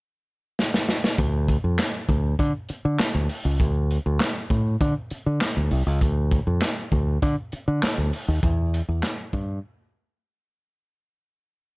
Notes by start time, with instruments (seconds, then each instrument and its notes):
0.59 snare
0.74 snare
0.89 snare
1.04 snare
1.18 fingered electric bass D2, kick, closed hi-hat
1.49 kick, closed hi-hat
1.64 fingered electric bass F2
1.79 snare, clap, closed hi-hat
2.09 fingered electric bass D2, kick, closed hi-hat
2.39 fingered electric bass D3, kick, closed hi-hat
2.69 muted fingered electric bass stroke, closed hi-hat
2.85 fingered electric bass D3
2.99 muted fingered electric bass stroke, snare, clap, closed hi-hat
3.15 fingered electric bass D2
3.29 open hi-hat
3.45 fingered electric bass C#2
3.60 fingered electric bass D2, kick, closed hi-hat
3.91 closed hi-hat
4.06 fingered electric bass D2
4.20 snare, clap, closed hi-hat
4.50 fingered electric bass A2, kick, closed hi-hat
4.81 fingered electric bass D3, kick, closed hi-hat
5.11 muted fingered electric bass stroke, closed hi-hat
5.26 fingered electric bass D3
5.41 snare, clap, closed hi-hat
5.57 fingered electric bass D2
5.71 fingered electric bass C2, open hi-hat
5.87 fingered electric bass C#2
6.01 fingered electric bass D2, kick, closed hi-hat
6.31 kick, closed hi-hat
6.47 fingered electric bass F2
6.62 snare, clap, closed hi-hat
6.92 fingered electric bass D2, kick, closed hi-hat
7.22 fingered electric bass D3, kick, closed hi-hat
7.52 muted fingered electric bass stroke, closed hi-hat
7.68 fingered electric bass D3
7.83 muted fingered electric bass stroke, snare, clap, closed hi-hat
7.98 fingered electric bass D2
8.13 open hi-hat
8.28 fingered electric bass D#2
8.43 fingered electric bass E2, kick, closed hi-hat
8.74 closed hi-hat
8.88 fingered electric bass E2
9.03 snare, clap, closed hi-hat
9.33 fingered electric bass G2, kick, closed hi-hat